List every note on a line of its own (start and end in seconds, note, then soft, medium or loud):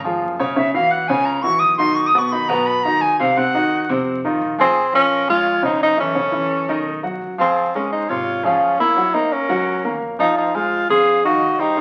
0.00 0.18 G#1 loud
0.04 0.33 F3 medium
0.04 0.33 F4 medium
0.04 0.33 G#4 medium
0.22 1.03 F#1 medium
0.39 0.54 C#3 medium
0.39 0.54 C#4 loud
0.39 0.54 C#5 loud
0.56 0.71 C#3 medium
0.56 0.71 C#4 medium
0.56 0.71 C#5 medium
0.56 0.73 E5 medium
0.73 1.03 E3 medium
0.73 1.03 E4 medium
0.73 1.03 F#4 medium
0.73 0.92 F5 loud
0.91 1.09 F#5 medium
1.08 1.58 C#2 loud
1.08 1.38 C#3 loud
1.08 1.38 C#4 loud
1.08 1.38 C#5 medium
1.08 1.27 G#5 medium
1.25 1.44 A#5 medium
1.42 1.72 E3 medium
1.42 1.73 E4 medium
1.42 1.73 F#4 medium
1.42 1.61 C#6 loud
1.59 2.43 B1 medium
1.59 1.77 D#6 loud
1.77 2.07 D#3 medium
1.77 2.08 D#4 medium
1.77 2.08 F#4 medium
1.77 1.96 C6 loud
1.95 2.08 C#6 medium
2.07 2.20 D#6 loud
2.14 2.28 B2 medium
2.14 2.29 B3 loud
2.14 2.29 B4 medium
2.18 2.33 C#6 medium
2.32 2.46 D#3 medium
2.32 2.46 D#4 medium
2.32 2.46 F#4 medium
2.32 2.50 B5 medium
2.48 2.98 F#2 loud
2.48 2.78 B2 loud
2.48 2.78 B3 loud
2.48 2.78 B4 loud
2.48 2.68 A#5 loud
2.67 2.85 B5 loud
2.83 3.13 D#3 medium
2.83 3.13 D#4 medium
2.83 3.13 F#4 medium
2.83 3.03 A#5 loud
3.01 3.83 C2 medium
3.01 3.19 G#5 loud
3.19 3.34 C3 loud
3.19 3.34 C4 medium
3.19 3.34 C5 medium
3.19 3.38 F5 loud
3.37 3.51 C3 medium
3.37 3.51 C4 medium
3.37 3.51 C5 medium
3.37 3.89 F#5 loud
3.54 3.83 D#3 medium
3.54 3.83 D#4 medium
3.54 3.83 F#4 medium
3.89 4.38 F2 loud
3.89 4.18 C3 loud
3.89 4.18 C4 medium
3.89 4.18 C5 loud
4.24 4.53 D#3 medium
4.24 4.53 D#4 medium
4.24 4.53 F4 medium
4.42 5.23 A#1 medium
4.58 4.73 F3 medium
4.58 4.92 C4 loud
4.58 4.73 F4 medium
4.58 4.91 G#4 medium
4.58 4.74 G#4 medium
4.93 5.22 F3 medium
4.93 5.27 C#4 loud
4.93 5.22 F4 medium
4.93 5.26 A#4 medium
4.93 5.22 F5 medium
5.28 5.77 F2 medium
5.28 5.57 G#3 medium
5.28 5.62 F4 loud
5.28 5.57 G#4 medium
5.28 5.61 C#5 medium
5.28 5.57 G#5 medium
5.62 5.92 C#3 medium
5.62 5.92 C#4 medium
5.62 5.81 D#4 medium
5.62 5.80 C5 medium
5.62 5.92 C#5 medium
5.81 6.63 F#2 medium
5.81 5.98 D#4 loud
5.81 5.98 C5 medium
5.97 6.12 E3 medium
5.97 7.00 C#4 medium
5.97 6.12 E4 medium
5.97 7.00 A4 medium
5.97 6.13 E5 medium
6.15 6.30 C#3 medium
6.15 6.30 C#4 medium
6.15 6.30 C#5 medium
6.32 6.61 E3 medium
6.32 6.62 E4 medium
6.32 6.62 E5 medium
6.69 7.18 B1 medium
6.69 6.98 D#3 medium
6.69 6.98 D#4 medium
6.69 6.98 D#5 medium
7.03 7.32 F#3 medium
7.03 7.32 F#4 medium
7.03 7.33 F#5 medium
7.22 8.03 C#2 medium
7.38 7.67 F3 medium
7.38 7.72 C4 loud
7.38 7.67 F4 medium
7.38 7.72 G#4 medium
7.38 7.68 F5 medium
7.73 8.03 G#3 medium
7.73 7.91 C#4 medium
7.73 8.03 G#4 medium
7.73 7.90 A#4 medium
7.73 8.04 G#5 medium
7.92 8.11 D#4 medium
7.92 8.10 C5 medium
8.08 8.58 G#1 loud
8.08 8.38 C3 medium
8.08 8.46 F4 loud
8.08 8.45 C#5 medium
8.08 8.38 C#5 medium
8.08 8.39 C6 medium
8.44 8.73 F3 medium
8.44 8.79 C#4 medium
8.44 8.74 F4 medium
8.44 8.78 G#4 medium
8.44 8.74 F5 medium
8.62 9.44 F#1 medium
8.79 8.94 A#3 medium
8.79 9.15 E4 loud
8.79 8.94 A#4 medium
8.79 9.15 C#5 medium
8.79 8.94 A#5 medium
8.97 9.11 F#3 medium
8.97 9.11 F#4 medium
8.97 9.11 F#5 medium
9.14 9.43 A#3 medium
9.14 9.34 D#4 medium
9.14 9.43 A#4 medium
9.14 9.33 C5 medium
9.14 9.43 A#5 medium
9.31 10.02 C#4 medium
9.31 10.02 A#4 medium
9.49 9.82 C#2 loud
9.49 9.78 F#3 loud
9.49 9.78 F#4 medium
9.49 9.78 F#5 medium
9.84 10.01 D#2 medium
9.84 10.13 A#3 medium
9.84 10.13 A#4 medium
9.84 10.13 A#5 medium
10.02 10.84 F2 medium
10.18 10.48 F3 medium
10.18 10.36 D#4 medium
10.18 10.48 F4 medium
10.18 10.34 C5 medium
10.18 10.48 F5 medium
10.35 10.56 D#4 medium
10.35 10.53 C5 medium
10.53 10.83 G#3 medium
10.53 10.90 F4 loud
10.53 10.84 G#4 medium
10.53 10.87 C5 medium
10.53 10.84 G#5 medium
10.88 11.38 F2 loud
10.88 11.18 C4 medium
10.88 11.23 G#4 loud
10.88 11.19 C5 medium
10.88 11.21 F5 medium
10.88 11.19 C6 medium
11.23 11.53 D#3 medium
11.23 11.53 D#4 medium
11.23 11.61 F#4 medium
11.23 11.60 D#5 medium
11.23 11.54 F5 medium
11.42 11.81 C2 medium
11.59 11.74 G3 medium
11.59 11.81 D#4 loud
11.59 11.74 G4 medium
11.59 11.81 C5 medium
11.59 11.74 G5 medium
11.77 11.81 D#3 medium
11.77 11.81 D#4 medium
11.77 11.81 D#5 medium